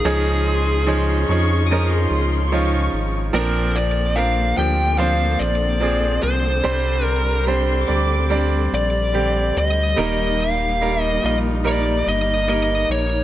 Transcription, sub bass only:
X:1
M:4/4
L:1/8
Q:1/4=72
K:Eb
V:1 name="Sub bass" clef=bass
_D,,3 F,,2 D,,2 A,,, | B,,,3 D,,2 B,,,2 C,, | C,,3 D,,2 B,,,2 D,, | E,,,3 B,,,2 G,,,2 B,,, |]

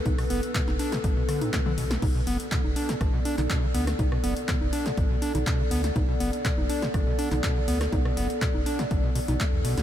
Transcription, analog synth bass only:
X:1
M:4/4
L:1/16
Q:1/4=122
K:Bm
V:1 name="Analog synth bass" clef=bass
B,,, z F,,, z2 F,,, z2 A,,, z4 z B,,,2 | B,,, z F,,, z2 F,,, z2 A,,, z2 B,,, z2 D,,2 | B,,, z F,,, z2 F,,, z2 A,,, z2 B,,, z2 D,,2 | B,,, z F,,, z2 F,,, z2 A,,, z2 B,,, z2 D,,2 |
B,,, z F,,, z2 F,,, z2 A,,, z2 B,,, z E,, B,,, D,, |]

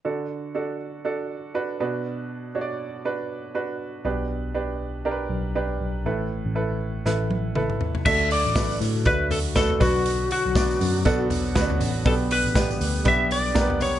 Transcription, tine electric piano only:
X:1
M:4/4
L:1/16
Q:"Swing 16ths" 1/4=120
K:D
V:1 name="Tine electric piano" clef=bass
z16 | z16 | B,,,8- B,,,2 B,,,4 B,,,2 | A,,,3 A,,,4- A,,, A,,,6 z2 |
D,,3 A,,,3 A,,2 D,,6 B,,,2- | B,,,2 z B,,,3 F,,2 B,,,4 D,,2 A,,,2 | B,,,3 A,,,3 D,,2 B,,,8 |]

